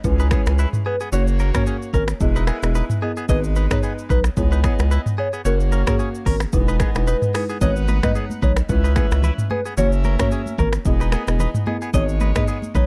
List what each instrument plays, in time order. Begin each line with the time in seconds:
0.04 analog synth bass C#2, horn section E3 C#4 G#4, marimba G#3 C#4 E4 B4, kick, shaker
0.20 clean electric guitar D#4 B4, shaker
0.31 marimba G#3 C#4 E4 B4, clean electric guitar B3 G#4, finger snap, kick, cross-stick, shaker
0.46 analog synth bass C#2, finger snap, cross-stick, shaker
0.59 clean electric guitar E4 B4, shaker
0.73 mid tom, shaker
0.86 clean electric guitar B3 G#4, soft synth lead B4
1.00 clean electric guitar B3 G#4, shaker
1.12 analog synth bass F#1, marimba A#3 C#4 F#4 C#5, horn section A#3 F#4 C#5, clean electric guitar F#4 C#5, soft synth lead C#5, shaker
1.27 shaker
1.39 clean electric guitar C#4 A#4, shaker
1.54 marimba A#3 C#4 F#4 C#5, clean electric guitar C#4 A#4, soft synth lead C#5, finger snap, kick, cross-stick, mid tom, shaker
1.67 clean electric guitar C#4 G#4, shaker
1.82 shaker
1.94 analog synth bass G#1, clean electric guitar C#4 A#4, soft synth lead A#4, kick, shaker
2.08 finger snap, cross-stick, shaker
2.20 analog synth bass E1, horn section G#3 E4 B4, marimba B3 E4 G#4 D#5, kick, shaker
2.36 clean electric guitar D#4 B4, shaker
2.47 clean electric guitar B3 G#4, finger snap, cross-stick, shaker
2.63 analog synth bass E1, marimba B3 E4 G#4 D#5, finger snap, cross-stick, shaker
2.75 clean electric guitar D#4 B4, shaker
2.90 mid tom, shaker
3.02 marimba B3 E4 G#4 D#5, clean electric guitar B3 G#4
3.17 clean electric guitar B3 G#4, shaker
3.29 analog synth bass G#1, horn section G#3 D#4 B4, marimba B3 D#4 G#4 D#5, clean electric guitar G#4 D#5, soft synth lead B4, kick, shaker
3.44 shaker
3.56 clean electric guitar D#4 B4, shaker
3.71 marimba B3 D#4 G#4 D#5, clean electric guitar D#4 B4, soft synth lead C#5, finger snap, kick, cross-stick, mid tom, shaker
3.83 clean electric guitar B3 G#4, shaker
3.99 shaker
4.10 analog synth bass B1, clean electric guitar D#4 B4, soft synth lead B4, kick, shaker
4.24 finger snap, cross-stick, shaker
4.37 analog synth bass C#2, marimba B3 E4 G#4 C#5, horn section B3 G#4 D#5, kick, shaker
4.52 clean electric guitar D#4 B4, shaker
4.64 marimba B3 E4 G#4 C#5, clean electric guitar B3 G#4, finger snap, kick, cross-stick, shaker
4.79 analog synth bass C#2, finger snap, cross-stick, shaker
4.91 clean electric guitar E4 B4, shaker
5.06 mid tom, shaker
5.18 clean electric guitar B3 G#4, soft synth lead C#5
5.33 clean electric guitar B3 G#4, shaker
5.45 analog synth bass F#1, marimba A#3 C#4 F#4 C#5, horn section A#3 F#4 C#5, clean electric guitar F#4 C#5, soft synth lead A#4, shaker
5.60 shaker
5.72 clean electric guitar C#4 A#4, shaker
5.87 marimba A#3 C#4 F#4 C#5, clean electric guitar C#4 A#4, soft synth lead G#4, finger snap, kick, cross-stick, mid tom, shaker
5.99 clean electric guitar C#4 G#4, shaker
6.15 shaker
6.26 analog synth bass G#1, clean electric guitar C#4 A#4, soft synth lead A#4, kick, open hi-hat, shaker
6.40 finger snap, cross-stick, shaker
6.53 analog synth bass E1, marimba G#3 D#4 E4 B4, horn section B3 G#4 D#5, kick, shaker
6.68 clean electric guitar D#4 B4, shaker
6.80 clean electric guitar B3 G#4, finger snap, kick, cross-stick, shaker
6.95 analog synth bass E1, marimba G#3 D#4 E4 B4, finger snap, cross-stick, shaker
7.07 clean electric guitar D#4 B4, soft synth lead B4, shaker
7.22 mid tom, shaker
7.34 marimba G#3 D#4 E4 B4, clean electric guitar B3 G#4, finger snap, cross-stick, open hi-hat, shaker
7.49 clean electric guitar B3 G#4, shaker
7.61 analog synth bass G#1, marimba G#3 B3 D#4 B4, horn section D#4 B4 F#5, clean electric guitar G#4 D#5, soft synth lead C#5, kick, low conga, shaker
7.76 shaker
7.88 clean electric guitar D#4 B4, high conga, shaker
8.03 marimba G#3 B3 D#4 B4, clean electric guitar D#4 B4, soft synth lead D#5, finger snap, kick, cross-stick, mid tom, high conga, shaker
8.15 clean electric guitar B3 G#4, shaker
8.30 high conga, shaker
8.42 analog synth bass B1, clean electric guitar D#4 B4, soft synth lead C#5, kick, high conga, low conga, shaker
8.56 finger snap, cross-stick, shaker
8.69 analog synth bass C#2, marimba G#3 C#4 E4 B4, horn section C#4 B4 E5, kick, shaker
8.84 clean electric guitar D#4 B4, shaker
8.96 marimba G#3 C#4 E4 B4, clean electric guitar B3 G#4, finger snap, kick, cross-stick, high conga, shaker
9.11 analog synth bass C#2, finger snap, cross-stick, shaker
9.23 clean electric guitar E4 B4, low conga, shaker
9.38 mid tom, high conga, shaker
9.50 clean electric guitar B3 G#4, soft synth lead B4, high conga
9.66 clean electric guitar B3 G#4, shaker
9.77 analog synth bass F#1, marimba A#3 C#4 F#4 C#5, horn section C#4 A#4 E5, clean electric guitar F#4 C#5, soft synth lead C#5, low conga, shaker
9.92 shaker
10.04 clean electric guitar C#4 A#4, high conga, shaker
10.19 marimba A#3 C#4 F#4 C#5, clean electric guitar C#4 A#4, soft synth lead C#5, finger snap, kick, cross-stick, mid tom, high conga, shaker
10.31 clean electric guitar C#4 G#4, shaker
10.46 high conga, shaker
10.58 analog synth bass G#1, clean electric guitar C#4 A#4, soft synth lead A#4, kick, high conga, low conga, shaker
10.73 finger snap, cross-stick, shaker
10.85 analog synth bass E1, horn section B3 G#4 D#5, marimba B3 E4 G#4 D#5, kick, shaker
11.01 clean electric guitar D#4 B4, shaker
11.12 clean electric guitar B3 G#4, finger snap, cross-stick, high conga, shaker
11.27 analog synth bass E1, marimba B3 E4 G#4 D#5, finger snap, cross-stick, shaker
11.39 clean electric guitar D#4 B4, low conga, shaker
11.54 mid tom, high conga, shaker
11.66 marimba B3 E4 G#4 D#5, clean electric guitar B3 G#4, high conga
11.82 clean electric guitar B3 G#4, shaker
11.94 analog synth bass G#1, horn section G#3 D#4 C#5, marimba B3 D#4 G#4 D#5, clean electric guitar G#4 D#5, soft synth lead C#5, kick, low conga, shaker
12.09 shaker
12.20 clean electric guitar D#4 B4, high conga, shaker
12.35 marimba B3 D#4 G#4 D#5, clean electric guitar D#4 B4, soft synth lead D#5, finger snap, kick, cross-stick, mid tom, high conga, shaker
12.48 clean electric guitar B3 G#4, shaker
12.62 high conga, shaker
12.75 analog synth bass B1, clean electric guitar D#4 B4, soft synth lead C#5, kick, high conga, low conga, shaker